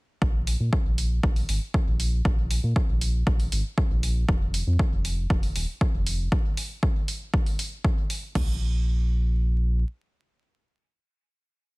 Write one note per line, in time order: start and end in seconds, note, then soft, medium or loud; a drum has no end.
0.22 0.56 A#1 medium
0.22 kick loud
0.47 open hi-hat medium
0.60 0.70 A#2 medium
0.73 kick loud
0.85 1.20 A#1 medium
0.98 open hi-hat medium
1.23 1.44 A#1 medium
1.23 kick loud
1.36 open hi-hat soft
1.49 1.59 G#1 medium
1.49 open hi-hat medium
1.74 kick loud
1.87 2.21 A#1 loud
2.00 open hi-hat medium
2.25 2.59 A#1 loud
2.25 kick loud
2.50 open hi-hat medium
2.63 2.74 A#2 medium
2.76 kick loud
2.89 3.23 A#1 medium
3.01 open hi-hat medium
3.27 3.47 A#1 medium
3.27 kick loud
3.40 open hi-hat soft
3.52 3.63 G#1 medium
3.52 open hi-hat medium
3.78 kick loud
3.91 4.25 A#1 loud
4.03 open hi-hat medium
4.29 4.63 F1 loud
4.29 kick loud
4.54 open hi-hat medium
4.67 4.77 F2 medium
4.79 kick loud
4.92 5.26 F1 medium
5.05 open hi-hat medium
5.30 5.51 F1 medium
5.30 kick loud
5.43 open hi-hat soft
5.56 5.66 D#1 medium
5.56 open hi-hat medium
5.81 kick loud
5.94 6.28 F1 loud
6.06 open hi-hat medium
6.32 kick loud
6.57 open hi-hat medium
6.83 kick loud
7.08 open hi-hat medium
7.34 kick loud
7.46 open hi-hat soft
7.59 open hi-hat medium
7.84 kick loud
8.10 open hi-hat medium
8.35 9.84 A#1 medium
8.35 kick loud
8.35 floor tom loud
8.35 crash medium